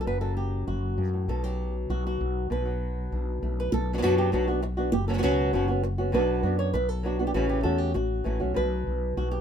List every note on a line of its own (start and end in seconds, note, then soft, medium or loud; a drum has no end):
0.00 0.21 F#3 medium
0.00 0.07 A4 medium
0.06 0.65 F#1 medium
0.06 0.97 F#2 medium
0.06 0.21 B4 medium
0.21 1.43 F#3 soft
0.21 0.36 A4 medium
0.37 0.67 G4 medium
0.68 0.97 F#1 medium
0.68 1.29 F#4 medium
0.97 1.27 F#2 medium
0.97 1.13 G2 medium
1.14 1.29 A2 medium
1.28 1.86 B1 medium
1.28 2.50 B2 medium
1.28 1.44 A4 medium
1.43 2.65 F#3 medium
1.43 1.74 G4 medium
1.90 2.19 B1 medium
1.90 2.05 F#4 medium
2.07 2.51 F#4 medium
2.21 2.49 B1 medium
2.50 3.08 B1 medium
2.50 4.01 B2 medium
2.50 3.59 B4 medium
2.65 3.70 F#3 medium
3.12 3.41 B1 medium
3.12 3.71 D4 soft
3.42 3.71 B1 medium
3.42 3.72 A3 soft
3.60 3.73 B4 medium
3.72 4.01 B1 medium
3.72 3.94 A4 loud
3.72 muted nylon-string guitar stroke medium
3.93 3.97 F#3 medium
3.93 3.97 B3 soft
3.93 3.98 D4 medium
3.93 3.98 F#4 medium
3.98 4.02 F#3 medium
3.98 4.02 B3 medium
3.98 4.02 D4 medium
3.98 4.02 F#4 medium
4.02 4.31 F#2 medium
4.02 4.31 B2 medium
4.02 4.32 F#3 medium
4.02 4.32 B3 medium
4.02 4.33 D4 loud
4.02 4.18 F#4 medium
4.18 4.32 G4 medium
4.32 4.90 B1 medium
4.32 4.47 B2 medium
4.32 4.47 F#3 medium
4.32 4.47 B3 medium
4.32 4.48 D4 medium
4.32 4.46 F#4 medium
4.48 4.61 B3 soft
4.48 4.62 D4 soft
4.48 4.62 F#4 medium
4.62 muted nylon-string guitar stroke medium
4.77 4.93 B3 soft
4.77 4.93 D4 medium
4.77 4.92 F#4 medium
4.92 5.22 F#1 medium
4.92 5.07 G4 medium
4.92 muted nylon-string guitar stroke medium
5.08 5.12 F#3 medium
5.08 5.13 B3 medium
5.08 5.14 C#4 medium
5.08 5.14 F#4 medium
5.08 5.14 A4 medium
5.13 5.17 F#3 medium
5.13 5.17 B3 medium
5.13 5.18 C#4 medium
5.13 5.18 F#4 medium
5.18 5.22 F#3 medium
5.18 5.22 B3 medium
5.18 5.23 C#4 medium
5.18 5.22 F#4 medium
5.23 5.52 C#2 medium
5.23 5.52 B2 medium
5.23 5.52 F#3 medium
5.23 5.53 B3 medium
5.23 5.53 C#4 medium
5.23 5.53 F#4 medium
5.53 6.11 F#1 medium
5.53 5.68 B2 medium
5.53 5.68 F#3 medium
5.53 5.68 B3 medium
5.53 5.68 C#4 medium
5.53 5.67 F#4 medium
5.68 5.83 B3 soft
5.68 5.83 C#4 soft
5.68 5.83 F#4 medium
5.83 muted nylon-string guitar stroke medium
5.98 6.13 B3 soft
5.98 6.13 C#4 medium
5.98 6.13 F#4 medium
6.12 6.42 B1 loud
6.12 6.43 B2 medium
6.12 6.43 F#3 medium
6.12 6.43 B3 medium
6.12 6.43 D4 medium
6.12 6.42 F#4 medium
6.12 6.43 B4 loud
6.43 6.72 F#2 medium
6.43 6.74 B3 soft
6.43 6.74 D4 medium
6.43 6.58 F#4 medium
6.59 6.73 C#5 medium
6.74 7.31 B1 medium
6.74 6.89 B4 medium
6.74 muted nylon-string guitar stroke medium
6.89 7.06 A4 medium
7.03 7.18 F#3 medium
7.03 7.19 B3 medium
7.03 7.19 D4 medium
7.03 7.18 F#4 medium
7.19 7.35 B3 soft
7.19 7.34 D4 medium
7.19 7.26 F#4 medium
7.27 7.34 G4 medium
7.34 7.63 A1 medium
7.34 7.64 C#3 medium
7.34 7.63 E3 medium
7.34 7.65 A3 medium
7.34 7.64 C#4 medium
7.34 7.49 F#4 medium
7.49 7.64 G4 medium
7.63 7.93 E2 medium
7.63 7.94 A3 soft
7.63 7.94 C#4 medium
7.63 7.93 F#4 medium
7.63 7.78 A4 medium
7.78 7.95 G4 medium
7.94 8.24 A1 medium
7.94 8.25 F#4 medium
7.94 muted nylon-string guitar stroke medium
8.24 8.39 A1 medium
8.24 8.39 E3 medium
8.24 8.40 A3 medium
8.24 8.39 C#4 medium
8.24 8.38 F#4 medium
8.40 8.55 B1 medium
8.40 8.56 A3 soft
8.40 8.55 C#4 soft
8.40 8.55 F#4 medium
8.54 8.85 B1 medium
8.54 9.41 B2 medium
8.54 9.17 B4 loud
8.87 9.15 B1 medium
9.17 9.41 B1 medium
9.17 9.31 F#4 medium
9.31 9.41 G4 medium